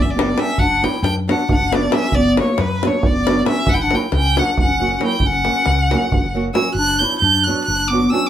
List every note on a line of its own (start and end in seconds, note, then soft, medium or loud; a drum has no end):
0.00 0.33 F#1 medium
0.00 0.12 E5 medium
0.04 0.14 C#4 medium
0.10 0.41 B3 medium
0.10 0.41 D5 medium
0.15 0.30 G3 soft
0.15 0.31 B3 soft
0.15 0.31 D4 medium
0.15 0.31 G4 medium
0.15 davul high medium
0.29 davul high soft
0.36 0.51 G3 medium
0.36 0.51 B3 medium
0.36 0.60 C#4 medium
0.36 0.51 D4 medium
0.36 0.51 G4 medium
0.36 0.61 E5 loud
0.36 davul high medium
0.58 0.85 F#1 medium
0.58 0.85 D4 loud
0.58 0.85 F#5 loud
0.58 davul low medium
0.82 0.96 F#3 medium
0.82 0.96 B3 medium
0.82 0.97 D4 medium
0.82 1.04 E4 medium
0.82 0.97 F#4 medium
0.82 1.02 G5 medium
0.82 davul high medium
0.94 davul high soft
1.03 1.30 F#2 loud
1.03 1.16 D4 medium
1.03 1.14 G5 loud
1.03 davul high medium
1.27 1.42 F#3 medium
1.27 1.42 B3 medium
1.27 1.43 D4 medium
1.27 1.49 D4 medium
1.27 1.43 F#4 medium
1.27 1.47 F#5 medium
1.27 davul high medium
1.48 1.86 F#1 medium
1.48 1.74 D4 medium
1.48 1.76 F#5 medium
1.48 davul low loud
1.72 1.85 F#3 medium
1.72 1.85 B3 medium
1.72 1.95 B3 medium
1.72 1.85 D4 medium
1.72 1.86 F#4 medium
1.72 1.95 D5 medium
1.72 davul high medium
1.82 davul high soft
1.90 2.04 F#3 medium
1.90 2.05 B3 medium
1.90 2.17 C#4 loud
1.90 2.05 D4 medium
1.90 2.06 F#4 medium
1.90 2.16 E5 loud
1.90 davul high medium
2.12 2.40 F#1 loud
2.12 2.39 B3 loud
2.12 2.38 D5 loud
2.12 davul low medium
2.37 2.51 F#3 medium
2.37 2.62 A#3 medium
2.37 2.52 B3 medium
2.37 2.52 D4 medium
2.37 2.52 F#4 medium
2.37 2.62 C#5 medium
2.37 davul high medium
2.48 davul high soft
2.58 2.85 F#2 loud
2.58 2.86 F#3 medium
2.58 2.88 B4 medium
2.58 davul high medium
2.83 2.96 F#3 medium
2.83 3.08 A#3 medium
2.83 2.97 B3 medium
2.83 2.97 D4 medium
2.83 2.97 F#4 medium
2.83 davul high medium
2.87 3.07 C#5 medium
3.03 3.41 F#1 medium
3.03 3.48 B3 medium
3.03 3.47 D5 loud
3.03 davul low loud
3.27 3.40 F#3 medium
3.27 3.41 B3 soft
3.27 3.41 D4 soft
3.27 3.41 F#4 medium
3.27 davul high medium
3.37 davul high soft
3.45 3.59 F#3 medium
3.45 3.59 B3 medium
3.45 3.60 D4 medium
3.45 3.60 F#4 medium
3.45 3.70 E5 loud
3.45 davul high medium
3.49 3.71 C#4 loud
3.67 3.94 F#1 medium
3.67 3.76 C#4 loud
3.67 3.75 F#5 loud
3.67 davul low loud
3.74 3.84 E4 medium
3.74 3.83 G5 medium
3.81 3.97 D4 loud
3.81 3.96 F#5 loud
3.91 4.05 F#3 medium
3.91 4.05 A#3 medium
3.91 4.06 C#4 medium
3.91 4.06 F#4 medium
3.91 davul high medium
3.95 4.14 E4 medium
3.95 4.13 G5 medium
4.01 davul high soft
4.12 4.39 C#2 loud
4.12 4.40 G5 loud
4.12 davul high medium
4.17 4.43 C#4 medium
4.36 4.51 F#3 medium
4.36 4.51 A#3 medium
4.36 4.51 C#4 medium
4.36 4.51 F#4 medium
4.36 4.58 F#5 medium
4.36 davul high medium
4.42 4.60 D4 medium
4.58 4.96 F#1 medium
4.58 4.99 F#5 medium
4.58 davul low loud
4.62 5.00 C#4 medium
4.80 4.94 F#3 medium
4.80 4.94 A#3 soft
4.80 4.94 C#4 soft
4.80 4.94 F#4 medium
4.91 davul high soft
5.00 5.14 F#3 medium
5.00 5.14 A#3 medium
5.00 5.15 C#4 medium
5.00 5.15 F#4 medium
5.00 davul high medium
5.04 5.26 E4 medium
5.04 5.28 G5 medium
5.20 5.48 F#1 loud
5.20 davul low medium
5.25 6.38 C#4 loud
5.25 6.38 F#5 loud
5.33 davul high soft
5.44 5.59 F#3 medium
5.44 5.60 A#3 soft
5.44 5.60 C#4 soft
5.44 5.61 F#4 medium
5.44 davul high medium
5.56 davul high soft
5.66 5.94 C#2 loud
5.66 davul high medium
5.91 6.05 F#3 medium
5.91 6.06 A#3 medium
5.91 6.06 C#4 medium
5.91 6.07 F#4 medium
5.91 davul high medium
6.02 davul high soft
6.11 6.50 F#1 medium
6.11 davul low loud
6.24 davul high soft
6.34 6.49 F#3 medium
6.34 6.49 A#3 medium
6.34 6.49 C#4 medium
6.34 6.50 F#4 medium
6.45 davul high soft
6.54 6.68 F#3 medium
6.54 6.69 A#3 medium
6.54 6.69 C#4 medium
6.54 6.75 C#4 medium
6.54 6.69 F#4 medium
6.54 6.74 E6 loud
6.54 davul high medium
6.65 davul high soft
6.74 7.02 F#1 medium
6.74 7.05 D4 loud
6.74 7.00 F#6 loud
6.98 7.14 F#3 medium
6.98 7.15 B3 medium
6.98 7.15 D4 medium
6.98 7.15 F#4 medium
6.98 7.18 G6 loud
7.03 7.23 E4 medium
7.19 7.49 F#2 loud
7.19 7.45 G6 loud
7.23 7.47 D4 loud
7.43 7.61 F#3 medium
7.43 7.68 D4 medium
7.43 7.64 F#6 medium
7.48 7.61 B3 medium
7.48 7.62 D4 medium
7.48 7.62 F#4 medium
7.64 8.06 F#1 medium
7.64 7.92 D4 medium
7.64 7.89 F#6 loud
7.88 8.14 B3 medium
7.88 8.11 D6 medium
7.92 8.05 F#3 medium
7.92 8.05 B3 soft
7.92 8.06 D4 soft
7.92 8.06 F#4 medium
8.10 8.25 F#3 medium
8.10 8.25 B3 medium
8.10 8.29 C#4 medium
8.10 8.26 D4 medium
8.10 8.28 E6 loud
8.14 8.26 F#4 medium
8.26 8.29 D6 loud